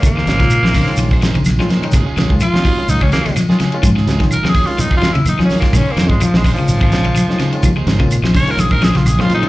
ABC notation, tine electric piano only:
X:1
M:4/4
L:1/16
Q:"Swing 16ths" 1/4=126
K:Bbm
V:1 name="Tine electric piano"
z3 [E,A,DF] z3 [E,A,DF]2 z4 [E,A,DF] z [E,A,DE] | z3 [E,A,DF] z3 [E,A,DF]2 z4 [E,A,DF] z [E,A,DF] | z3 [E,A,DF] z3 [E,A,DF]2 z4 [E,A,DF] z [E,A,DF] | z3 [E,A,DF] z3 [E,A,DF]2 z4 [E,A,DF] z [E,A,DF] |
z3 [E,A,DF] z3 [E,A,DF]2 z4 [E,A,DF] z [E,A,DF] |]